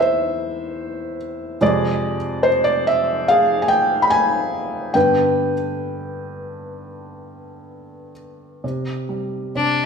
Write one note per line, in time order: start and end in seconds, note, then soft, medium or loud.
0.00 1.56 E2 medium
0.00 1.57 E3 soft
0.00 1.57 C4 medium
0.00 1.63 B4 medium
0.00 1.63 C5 medium
0.00 1.15 E5 medium
1.61 2.16 F2 medium
1.61 2.16 C3 soft
1.61 2.17 G#3 medium
1.61 3.24 G#4 medium
1.61 2.47 D5 medium
2.43 2.63 C5 medium
2.64 2.86 D5 medium
2.87 3.25 E5 medium
3.28 4.92 G#4 medium
3.28 3.64 F5 medium
3.62 3.69 G#5 medium
3.68 4.01 G5 medium
4.02 4.10 B5 medium
4.10 4.91 G#5 loud
4.94 5.52 G2 soft
4.94 5.52 D3 soft
4.94 5.53 B3 medium
4.94 8.13 B4 medium
4.94 8.11 G5 medium
8.64 9.54 C3 soft
9.09 9.86 G3 soft
9.55 9.86 C3 soft
9.55 9.85 D4 medium